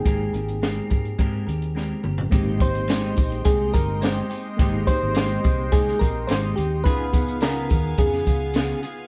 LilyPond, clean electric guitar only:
\new Staff \with { instrumentName = "Clean electric guitar" } { \time 4/4 \key aes \major \tempo 4 = 106 <aes c' g' bes'>8 <c' g' bes'>8 <aes c' g' bes'>8 <c' g' bes'>8 <aes c' g' bes'>8 <c' g' bes'>8 <aes c' g' bes'>8 <c' g' bes'>8 | <aes c' ees' g'>8 <c' ees' g'>8 <aes c' ees' g'>8 <c' ees' g'>8 <aes c' ees' g'>8 <c' ees' g'>8 <aes c' ees' g'>8 <c' ees' g'>8 | <aes c' ees' g'>8 <c' ees' g'>8 <aes c' ees' g'>8 <c' ees' g'>8 <aes c' ees' g'>8 <c' ees' g'>8 <aes c' ees' g'>8 <c' ees' g'>8 | <des ces' f' aes'>8 <ces' f' aes'>8 <des ces' f' aes'>8 <ces' f' aes'>8 <des ces' f' aes'>8 <ces' f' aes'>8 <des ces' f' aes'>8 <ces' f' aes'>8 | }